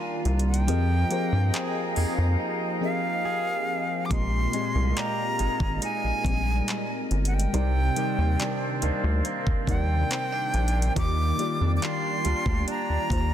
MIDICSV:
0, 0, Header, 1, 7, 480
1, 0, Start_track
1, 0, Key_signature, -3, "minor"
1, 0, Tempo, 857143
1, 381, Time_signature, 4, 2, 24, 8
1, 7469, End_track
2, 0, Start_track
2, 0, Title_t, "Flute"
2, 0, Program_c, 0, 73
2, 0, Note_on_c, 0, 80, 108
2, 114, Note_off_c, 0, 80, 0
2, 271, Note_on_c, 0, 79, 95
2, 1204, Note_off_c, 0, 79, 0
2, 1590, Note_on_c, 0, 77, 103
2, 2271, Note_on_c, 0, 86, 77
2, 2279, Note_off_c, 0, 77, 0
2, 2309, Note_on_c, 0, 84, 116
2, 2317, Note_off_c, 0, 86, 0
2, 2791, Note_on_c, 0, 82, 105
2, 2799, Note_off_c, 0, 84, 0
2, 3266, Note_off_c, 0, 82, 0
2, 3271, Note_on_c, 0, 80, 107
2, 3932, Note_off_c, 0, 80, 0
2, 4072, Note_on_c, 0, 78, 65
2, 4111, Note_on_c, 0, 79, 92
2, 4120, Note_off_c, 0, 78, 0
2, 5066, Note_off_c, 0, 79, 0
2, 5430, Note_on_c, 0, 79, 110
2, 6123, Note_off_c, 0, 79, 0
2, 6150, Note_on_c, 0, 86, 118
2, 6564, Note_off_c, 0, 86, 0
2, 6590, Note_on_c, 0, 86, 77
2, 6631, Note_on_c, 0, 84, 113
2, 6639, Note_off_c, 0, 86, 0
2, 7106, Note_off_c, 0, 84, 0
2, 7112, Note_on_c, 0, 82, 105
2, 7469, Note_off_c, 0, 82, 0
2, 7469, End_track
3, 0, Start_track
3, 0, Title_t, "Flute section"
3, 0, Program_c, 1, 73
3, 0, Note_on_c, 1, 62, 81
3, 0, Note_on_c, 1, 74, 74
3, 0, Note_on_c, 1, 77, 69
3, 0, Note_on_c, 1, 82, 84
3, 358, Note_off_c, 1, 74, 0
3, 362, Note_off_c, 1, 62, 0
3, 362, Note_off_c, 1, 77, 0
3, 362, Note_off_c, 1, 82, 0
3, 380, Note_on_c, 1, 65, 77
3, 381, Note_on_c, 1, 75, 68
3, 381, Note_on_c, 1, 77, 69
3, 381, Note_on_c, 1, 79, 73
3, 381, Note_on_c, 1, 82, 80
3, 2154, Note_off_c, 1, 77, 0
3, 2162, Note_off_c, 1, 82, 0
3, 2281, Note_off_c, 1, 65, 0
3, 2282, Note_off_c, 1, 75, 0
3, 2282, Note_off_c, 1, 79, 0
3, 2299, Note_on_c, 1, 70, 68
3, 2300, Note_on_c, 1, 65, 78
3, 2300, Note_on_c, 1, 75, 79
3, 4044, Note_off_c, 1, 65, 0
3, 4201, Note_off_c, 1, 75, 0
3, 4220, Note_on_c, 1, 74, 69
3, 4221, Note_on_c, 1, 60, 81
3, 4221, Note_on_c, 1, 72, 84
3, 6118, Note_off_c, 1, 70, 0
3, 6121, Note_off_c, 1, 74, 0
3, 6122, Note_off_c, 1, 60, 0
3, 6122, Note_off_c, 1, 72, 0
3, 6141, Note_on_c, 1, 62, 80
3, 6141, Note_on_c, 1, 74, 73
3, 6141, Note_on_c, 1, 77, 68
3, 6141, Note_on_c, 1, 79, 84
3, 7469, Note_off_c, 1, 62, 0
3, 7469, Note_off_c, 1, 74, 0
3, 7469, Note_off_c, 1, 77, 0
3, 7469, Note_off_c, 1, 79, 0
3, 7469, End_track
4, 0, Start_track
4, 0, Title_t, "FM electric piano"
4, 0, Program_c, 2, 5
4, 0, Control_c, 2, 64, 127
4, 0, Note_on_c, 2, 51, 70
4, 0, Note_on_c, 2, 55, 64
4, 0, Note_on_c, 2, 58, 67
4, 0, Note_on_c, 2, 65, 66
4, 0, Note_on_c, 2, 70, 74
4, 91, Note_off_c, 2, 51, 0
4, 93, Note_off_c, 2, 58, 0
4, 96, Note_off_c, 2, 65, 0
4, 98, Note_off_c, 2, 55, 0
4, 100, Note_off_c, 2, 70, 0
4, 374, Note_on_c, 2, 53, 78
4, 378, Note_on_c, 2, 60, 70
4, 381, Note_on_c, 2, 67, 74
4, 385, Note_on_c, 2, 68, 74
4, 388, Control_c, 2, 64, 0
4, 388, Note_on_c, 2, 70, 73
4, 392, Note_on_c, 2, 75, 83
4, 473, Control_c, 2, 64, 127
4, 522, Note_off_c, 2, 53, 0
4, 524, Note_off_c, 2, 60, 0
4, 526, Note_off_c, 2, 67, 0
4, 528, Note_off_c, 2, 68, 0
4, 529, Note_off_c, 2, 70, 0
4, 531, Note_off_c, 2, 75, 0
4, 614, Note_on_c, 2, 53, 81
4, 618, Note_on_c, 2, 60, 72
4, 621, Note_on_c, 2, 67, 71
4, 624, Note_on_c, 2, 68, 74
4, 628, Note_on_c, 2, 70, 71
4, 631, Note_on_c, 2, 72, 83
4, 1196, Note_off_c, 2, 53, 0
4, 1198, Note_off_c, 2, 60, 0
4, 1200, Note_off_c, 2, 67, 0
4, 1201, Note_off_c, 2, 68, 0
4, 1203, Note_off_c, 2, 70, 0
4, 1205, Note_off_c, 2, 72, 0
4, 1572, Note_on_c, 2, 53, 68
4, 1575, Note_on_c, 2, 60, 65
4, 1579, Note_on_c, 2, 67, 65
4, 1582, Note_on_c, 2, 68, 65
4, 1586, Note_on_c, 2, 70, 64
4, 1589, Note_on_c, 2, 75, 77
4, 2011, Note_off_c, 2, 53, 0
4, 2012, Note_off_c, 2, 60, 0
4, 2014, Note_off_c, 2, 67, 0
4, 2016, Note_off_c, 2, 68, 0
4, 2017, Note_off_c, 2, 70, 0
4, 2019, Note_off_c, 2, 75, 0
4, 2293, Note_on_c, 2, 46, 74
4, 2297, Note_on_c, 2, 56, 68
4, 2302, Note_on_c, 2, 60, 69
4, 2306, Note_on_c, 2, 67, 70
4, 2309, Control_c, 2, 64, 0
4, 2311, Note_on_c, 2, 75, 82
4, 2398, Control_c, 2, 64, 127
4, 2442, Note_off_c, 2, 46, 0
4, 2444, Note_off_c, 2, 56, 0
4, 2446, Note_off_c, 2, 60, 0
4, 2448, Note_off_c, 2, 67, 0
4, 2451, Note_off_c, 2, 75, 0
4, 2532, Note_on_c, 2, 46, 78
4, 2537, Note_on_c, 2, 56, 71
4, 2541, Note_on_c, 2, 60, 68
4, 2545, Note_on_c, 2, 67, 71
4, 2550, Note_on_c, 2, 74, 68
4, 2582, Note_off_c, 2, 74, 0
4, 2586, Note_on_c, 2, 75, 89
4, 3115, Note_off_c, 2, 46, 0
4, 3117, Note_off_c, 2, 56, 0
4, 3120, Note_off_c, 2, 60, 0
4, 3122, Note_off_c, 2, 67, 0
4, 3142, Note_off_c, 2, 75, 0
4, 3494, Note_on_c, 2, 46, 70
4, 3498, Note_on_c, 2, 56, 65
4, 3502, Note_on_c, 2, 60, 66
4, 3507, Note_on_c, 2, 55, 65
4, 3511, Note_on_c, 2, 74, 61
4, 3542, Note_off_c, 2, 74, 0
4, 3548, Note_on_c, 2, 75, 73
4, 3931, Note_off_c, 2, 46, 0
4, 3933, Note_off_c, 2, 56, 0
4, 3936, Note_off_c, 2, 60, 0
4, 3938, Note_off_c, 2, 55, 0
4, 3958, Note_off_c, 2, 75, 0
4, 4213, Note_on_c, 2, 48, 78
4, 4217, Note_on_c, 2, 55, 69
4, 4222, Note_on_c, 2, 63, 70
4, 4226, Note_on_c, 2, 70, 73
4, 4229, Control_c, 2, 64, 0
4, 4230, Note_on_c, 2, 74, 88
4, 4318, Control_c, 2, 64, 127
4, 4361, Note_off_c, 2, 48, 0
4, 4364, Note_off_c, 2, 55, 0
4, 4366, Note_off_c, 2, 63, 0
4, 4368, Note_off_c, 2, 70, 0
4, 4370, Note_off_c, 2, 74, 0
4, 4453, Note_on_c, 2, 48, 74
4, 4457, Note_on_c, 2, 55, 72
4, 4461, Note_on_c, 2, 63, 74
4, 4466, Note_on_c, 2, 70, 71
4, 4471, Note_on_c, 2, 74, 88
4, 5036, Note_off_c, 2, 48, 0
4, 5038, Note_off_c, 2, 55, 0
4, 5040, Note_off_c, 2, 63, 0
4, 5042, Note_off_c, 2, 70, 0
4, 5045, Note_off_c, 2, 74, 0
4, 5413, Note_on_c, 2, 48, 73
4, 5417, Note_on_c, 2, 55, 65
4, 5422, Note_on_c, 2, 63, 65
4, 5426, Note_on_c, 2, 70, 69
4, 5430, Note_on_c, 2, 74, 76
4, 5851, Note_off_c, 2, 48, 0
4, 5853, Note_off_c, 2, 55, 0
4, 5855, Note_off_c, 2, 63, 0
4, 5857, Note_off_c, 2, 70, 0
4, 5860, Note_off_c, 2, 74, 0
4, 6131, Note_on_c, 2, 51, 76
4, 6136, Note_on_c, 2, 58, 71
4, 6141, Note_on_c, 2, 65, 73
4, 6145, Note_on_c, 2, 67, 72
4, 6148, Control_c, 2, 64, 0
4, 6149, Note_on_c, 2, 74, 81
4, 6250, Control_c, 2, 64, 127
4, 6281, Note_off_c, 2, 51, 0
4, 6283, Note_off_c, 2, 58, 0
4, 6285, Note_off_c, 2, 65, 0
4, 6288, Note_off_c, 2, 67, 0
4, 6290, Note_off_c, 2, 74, 0
4, 6372, Note_on_c, 2, 51, 78
4, 6376, Note_on_c, 2, 58, 72
4, 6380, Note_on_c, 2, 65, 72
4, 6385, Note_on_c, 2, 67, 69
4, 6389, Note_on_c, 2, 74, 89
4, 6955, Note_off_c, 2, 51, 0
4, 6957, Note_off_c, 2, 58, 0
4, 6959, Note_off_c, 2, 65, 0
4, 6961, Note_off_c, 2, 67, 0
4, 6964, Note_off_c, 2, 74, 0
4, 7333, Note_on_c, 2, 51, 72
4, 7338, Note_on_c, 2, 58, 63
4, 7342, Note_on_c, 2, 65, 70
4, 7347, Note_on_c, 2, 67, 68
4, 7351, Note_on_c, 2, 72, 80
4, 7469, Note_off_c, 2, 51, 0
4, 7469, Note_off_c, 2, 58, 0
4, 7469, Note_off_c, 2, 65, 0
4, 7469, Note_off_c, 2, 67, 0
4, 7469, Note_off_c, 2, 72, 0
4, 7469, End_track
5, 0, Start_track
5, 0, Title_t, "Clean electric guitar"
5, 0, Program_c, 3, 27
5, 0, Note_on_c, 3, 51, 90
5, 0, Note_on_c, 3, 55, 65
5, 0, Note_on_c, 3, 62, 64
5, 0, Note_on_c, 3, 65, 77
5, 380, Note_off_c, 3, 55, 0
5, 382, Note_on_c, 3, 53, 89
5, 399, Note_off_c, 3, 51, 0
5, 429, Note_off_c, 3, 62, 0
5, 621, Note_on_c, 3, 58, 65
5, 862, Note_on_c, 3, 68, 71
5, 1100, Note_off_c, 3, 58, 0
5, 1102, Note_on_c, 3, 58, 65
5, 1103, Note_off_c, 3, 65, 0
5, 1105, Note_on_c, 3, 63, 66
5, 1106, Note_off_c, 3, 68, 0
5, 1108, Note_on_c, 3, 68, 73
5, 1340, Note_off_c, 3, 63, 0
5, 1342, Note_on_c, 3, 63, 62
5, 1820, Note_off_c, 3, 68, 0
5, 1822, Note_on_c, 3, 68, 72
5, 2301, Note_on_c, 3, 46, 89
5, 2342, Note_off_c, 3, 53, 0
5, 2539, Note_off_c, 3, 58, 0
5, 2541, Note_on_c, 3, 56, 65
5, 2779, Note_off_c, 3, 68, 0
5, 2781, Note_on_c, 3, 67, 69
5, 3015, Note_off_c, 3, 56, 0
5, 3022, Note_on_c, 3, 56, 64
5, 3023, Note_off_c, 3, 63, 0
5, 3025, Note_on_c, 3, 63, 65
5, 3038, Note_off_c, 3, 67, 0
5, 3260, Note_off_c, 3, 63, 0
5, 3262, Note_on_c, 3, 63, 65
5, 4220, Note_off_c, 3, 46, 0
5, 4222, Note_on_c, 3, 48, 93
5, 4269, Note_off_c, 3, 56, 0
5, 4461, Note_on_c, 3, 51, 66
5, 4699, Note_off_c, 3, 63, 0
5, 4702, Note_on_c, 3, 62, 70
5, 4939, Note_off_c, 3, 51, 0
5, 4941, Note_on_c, 3, 51, 65
5, 4945, Note_on_c, 3, 58, 67
5, 4946, Note_off_c, 3, 62, 0
5, 4948, Note_on_c, 3, 62, 68
5, 5180, Note_off_c, 3, 58, 0
5, 5182, Note_on_c, 3, 58, 69
5, 5659, Note_off_c, 3, 62, 0
5, 5661, Note_on_c, 3, 60, 75
5, 5781, Note_off_c, 3, 60, 0
5, 5781, Note_on_c, 3, 62, 65
5, 6138, Note_off_c, 3, 48, 0
5, 6140, Note_off_c, 3, 51, 0
5, 6140, Note_on_c, 3, 51, 96
5, 6189, Note_off_c, 3, 62, 0
5, 6381, Note_on_c, 3, 55, 67
5, 6621, Note_on_c, 3, 65, 74
5, 6859, Note_off_c, 3, 55, 0
5, 6861, Note_on_c, 3, 55, 67
5, 6863, Note_off_c, 3, 58, 0
5, 6865, Note_on_c, 3, 62, 67
5, 6866, Note_off_c, 3, 65, 0
5, 6868, Note_on_c, 3, 65, 73
5, 7094, Note_off_c, 3, 62, 0
5, 7101, Note_on_c, 3, 62, 66
5, 7469, Note_off_c, 3, 51, 0
5, 7469, Note_off_c, 3, 55, 0
5, 7469, Note_off_c, 3, 62, 0
5, 7469, Note_off_c, 3, 65, 0
5, 7469, End_track
6, 0, Start_track
6, 0, Title_t, "Analog synth bass"
6, 0, Program_c, 4, 38
6, 141, Note_on_c, 4, 36, 103
6, 381, Note_on_c, 4, 41, 106
6, 390, Note_off_c, 4, 36, 0
6, 583, Note_off_c, 4, 41, 0
6, 742, Note_on_c, 4, 43, 91
6, 842, Note_off_c, 4, 43, 0
6, 1102, Note_on_c, 4, 41, 52
6, 1149, Note_off_c, 4, 41, 0
6, 1222, Note_on_c, 4, 41, 99
6, 1322, Note_off_c, 4, 41, 0
6, 2300, Note_on_c, 4, 34, 108
6, 2502, Note_off_c, 4, 34, 0
6, 2661, Note_on_c, 4, 36, 91
6, 2762, Note_off_c, 4, 36, 0
6, 3022, Note_on_c, 4, 32, 49
6, 3069, Note_off_c, 4, 32, 0
6, 3137, Note_on_c, 4, 32, 98
6, 3240, Note_off_c, 4, 32, 0
6, 3382, Note_on_c, 4, 34, 46
6, 3429, Note_off_c, 4, 34, 0
6, 3498, Note_on_c, 4, 34, 101
6, 3701, Note_off_c, 4, 34, 0
6, 3981, Note_on_c, 4, 31, 97
6, 4183, Note_off_c, 4, 31, 0
6, 4222, Note_on_c, 4, 36, 108
6, 4423, Note_off_c, 4, 36, 0
6, 4582, Note_on_c, 4, 39, 90
6, 4683, Note_off_c, 4, 39, 0
6, 4942, Note_on_c, 4, 38, 53
6, 4989, Note_off_c, 4, 38, 0
6, 5061, Note_on_c, 4, 38, 107
6, 5162, Note_off_c, 4, 38, 0
6, 5302, Note_on_c, 4, 39, 45
6, 5350, Note_off_c, 4, 39, 0
6, 5418, Note_on_c, 4, 39, 98
6, 5621, Note_off_c, 4, 39, 0
6, 5902, Note_on_c, 4, 34, 98
6, 6103, Note_off_c, 4, 34, 0
6, 6140, Note_on_c, 4, 39, 108
6, 6342, Note_off_c, 4, 39, 0
6, 6502, Note_on_c, 4, 41, 87
6, 6602, Note_off_c, 4, 41, 0
6, 6861, Note_on_c, 4, 38, 52
6, 6909, Note_off_c, 4, 38, 0
6, 6977, Note_on_c, 4, 38, 92
6, 7079, Note_off_c, 4, 38, 0
6, 7221, Note_on_c, 4, 39, 46
6, 7269, Note_off_c, 4, 39, 0
6, 7338, Note_on_c, 4, 39, 90
6, 7469, Note_off_c, 4, 39, 0
6, 7469, End_track
7, 0, Start_track
7, 0, Title_t, "Drums"
7, 141, Note_on_c, 9, 42, 39
7, 197, Note_off_c, 9, 42, 0
7, 221, Note_on_c, 9, 42, 53
7, 277, Note_off_c, 9, 42, 0
7, 301, Note_on_c, 9, 42, 69
7, 357, Note_off_c, 9, 42, 0
7, 381, Note_on_c, 9, 42, 68
7, 437, Note_off_c, 9, 42, 0
7, 619, Note_on_c, 9, 42, 63
7, 675, Note_off_c, 9, 42, 0
7, 861, Note_on_c, 9, 42, 81
7, 868, Note_on_c, 9, 39, 113
7, 917, Note_off_c, 9, 42, 0
7, 924, Note_off_c, 9, 39, 0
7, 1099, Note_on_c, 9, 46, 51
7, 1155, Note_off_c, 9, 46, 0
7, 2300, Note_on_c, 9, 36, 113
7, 2300, Note_on_c, 9, 42, 67
7, 2356, Note_off_c, 9, 36, 0
7, 2356, Note_off_c, 9, 42, 0
7, 2539, Note_on_c, 9, 42, 62
7, 2595, Note_off_c, 9, 42, 0
7, 2781, Note_on_c, 9, 42, 77
7, 2788, Note_on_c, 9, 39, 107
7, 2837, Note_off_c, 9, 42, 0
7, 2844, Note_off_c, 9, 39, 0
7, 3019, Note_on_c, 9, 42, 68
7, 3075, Note_off_c, 9, 42, 0
7, 3137, Note_on_c, 9, 36, 102
7, 3193, Note_off_c, 9, 36, 0
7, 3259, Note_on_c, 9, 42, 84
7, 3315, Note_off_c, 9, 42, 0
7, 3498, Note_on_c, 9, 36, 88
7, 3505, Note_on_c, 9, 42, 64
7, 3554, Note_off_c, 9, 36, 0
7, 3561, Note_off_c, 9, 42, 0
7, 3740, Note_on_c, 9, 42, 72
7, 3748, Note_on_c, 9, 39, 105
7, 3796, Note_off_c, 9, 42, 0
7, 3804, Note_off_c, 9, 39, 0
7, 3981, Note_on_c, 9, 42, 39
7, 4037, Note_off_c, 9, 42, 0
7, 4061, Note_on_c, 9, 42, 56
7, 4117, Note_off_c, 9, 42, 0
7, 4141, Note_on_c, 9, 42, 66
7, 4197, Note_off_c, 9, 42, 0
7, 4222, Note_on_c, 9, 42, 69
7, 4278, Note_off_c, 9, 42, 0
7, 4460, Note_on_c, 9, 42, 61
7, 4516, Note_off_c, 9, 42, 0
7, 4702, Note_on_c, 9, 42, 75
7, 4709, Note_on_c, 9, 39, 110
7, 4758, Note_off_c, 9, 42, 0
7, 4765, Note_off_c, 9, 39, 0
7, 4939, Note_on_c, 9, 42, 71
7, 4995, Note_off_c, 9, 42, 0
7, 5179, Note_on_c, 9, 42, 84
7, 5235, Note_off_c, 9, 42, 0
7, 5301, Note_on_c, 9, 36, 103
7, 5357, Note_off_c, 9, 36, 0
7, 5417, Note_on_c, 9, 36, 95
7, 5424, Note_on_c, 9, 42, 70
7, 5473, Note_off_c, 9, 36, 0
7, 5480, Note_off_c, 9, 42, 0
7, 5660, Note_on_c, 9, 42, 71
7, 5667, Note_on_c, 9, 39, 113
7, 5716, Note_off_c, 9, 42, 0
7, 5723, Note_off_c, 9, 39, 0
7, 5901, Note_on_c, 9, 42, 40
7, 5957, Note_off_c, 9, 42, 0
7, 5981, Note_on_c, 9, 42, 53
7, 6037, Note_off_c, 9, 42, 0
7, 6061, Note_on_c, 9, 42, 64
7, 6117, Note_off_c, 9, 42, 0
7, 6140, Note_on_c, 9, 36, 112
7, 6141, Note_on_c, 9, 42, 69
7, 6196, Note_off_c, 9, 36, 0
7, 6197, Note_off_c, 9, 42, 0
7, 6379, Note_on_c, 9, 42, 66
7, 6435, Note_off_c, 9, 42, 0
7, 6621, Note_on_c, 9, 42, 80
7, 6628, Note_on_c, 9, 39, 108
7, 6677, Note_off_c, 9, 42, 0
7, 6684, Note_off_c, 9, 39, 0
7, 6858, Note_on_c, 9, 42, 73
7, 6914, Note_off_c, 9, 42, 0
7, 6977, Note_on_c, 9, 36, 102
7, 7033, Note_off_c, 9, 36, 0
7, 7099, Note_on_c, 9, 42, 84
7, 7155, Note_off_c, 9, 42, 0
7, 7338, Note_on_c, 9, 36, 93
7, 7345, Note_on_c, 9, 42, 65
7, 7394, Note_off_c, 9, 36, 0
7, 7401, Note_off_c, 9, 42, 0
7, 7469, End_track
0, 0, End_of_file